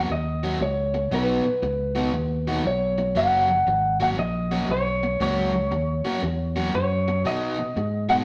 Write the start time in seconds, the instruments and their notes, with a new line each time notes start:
0.10 fingered electric bass D#2, clean electric guitar D#5, muted overdriven electric guitar stroke
0.43 overdriven electric guitar F#3 A#3 C#4 F#4
0.61 fingered electric bass C#2, clean electric guitar C#5, muted overdriven electric guitar stroke
0.94 muted overdriven electric guitar stroke
1.11 fingered electric bass B1, overdriven electric guitar B2 B3 D#4 F#4, clean electric guitar B4
1.45 muted overdriven electric guitar stroke
1.62 fingered electric bass C#2, muted overdriven electric guitar stroke
1.95 overdriven electric guitar B2 B3 D#4 F#4
2.13 fingered electric bass D#2, muted overdriven electric guitar stroke
2.47 overdriven electric guitar B2 B3 D#4 F#4
2.64 fingered electric bass B1, clean electric guitar C#5, muted overdriven electric guitar stroke
2.98 muted overdriven electric guitar stroke
3.15 fingered electric bass F#1, overdriven electric guitar F#3 A#3 C#4 F#4, clean electric guitar F#5
3.49 muted overdriven electric guitar stroke
3.67 fingered electric bass G#1, muted overdriven electric guitar stroke
4.00 overdriven electric guitar F#3 A#3 C#4 F#4, clean electric guitar F#5
4.18 fingered electric bass A#1, clean electric guitar D#5, muted overdriven electric guitar stroke
4.51 overdriven electric guitar F#3 A#3 C#4 F#4
4.69 fingered electric bass B1, clean electric guitar C#5, muted overdriven electric guitar stroke
5.03 muted overdriven electric guitar stroke
5.20 fingered electric bass C#2, overdriven electric guitar F#3 A#3 C#4 F#4, clean electric guitar C#5
5.54 muted overdriven electric guitar stroke
5.71 fingered electric bass D#2, muted overdriven electric guitar stroke
6.05 overdriven electric guitar F#3 A#3 C#4 F#4
6.22 fingered electric bass E2, muted overdriven electric guitar stroke
6.56 overdriven electric guitar F#3 A#3 C#4 F#4
6.74 fingered electric bass F#2, clean electric guitar C#5, muted overdriven electric guitar stroke
7.08 muted overdriven electric guitar stroke
7.25 overdriven electric guitar B2 B3 D#4 F#4, fingered electric bass B2, clean electric guitar D#5
7.59 muted overdriven electric guitar stroke
7.76 fingered electric bass G#2, muted overdriven electric guitar stroke
8.09 overdriven electric guitar B2 B3 D#4 F#4, clean electric guitar F#5